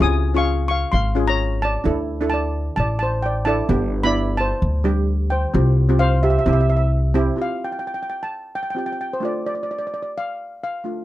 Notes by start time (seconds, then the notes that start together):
0.00 C#2 C#4 F4 G#4 G#5 D#6
0.34 C#4 F4 G#4 F5 C#6
0.68 F5 C#6
0.92 G#1 F5 C6
1.15 C#4 F4 G#4
1.27 C#5 A#5
1.62 D5 A5
1.84 D2 D4 E4 A4
2.21 D4 E4 A4
2.30 A5
2.34 D5
2.76 A1 D5 A5
2.99 C5 A5
3.22 D5 G5
3.45 D4 E4 A4 D5 A5
3.69 G1 B3 D4 G4
4.03 B3 D4 E4 D5 B5
4.37 C5 A5
4.62 D2
4.84 G3 D4 G4
5.30 C5 G5
5.54 C2 C4 F4 G4
5.89 C4 F4 G4
5.99 C5 F5
6.23 G4 E5
6.30 E5
6.39 E5
6.46 C2 C4 E4 G4 E5
6.53 E5
6.61 E5
6.70 E5
6.77 E5
7.14 C4 E4 G4
7.36 C4 F4 G4
7.42 F5
7.64 G5
7.72 G5
7.79 G5
7.87 G5
7.94 G5
8.03 G5
8.10 G5
8.23 A5
8.55 G5
8.63 G5
8.70 G5
8.75 C4 F4 G4 G5
8.86 G5
8.92 G5
9.01 G5
9.13 C5
9.20 A3 D4 F4
9.25 D5
9.46 D5
9.55 D5
9.63 D5
9.71 D5
9.78 D5
9.87 D5
9.94 D5
10.03 D5
10.18 F5
10.64 F5
10.84 A3 D4 F4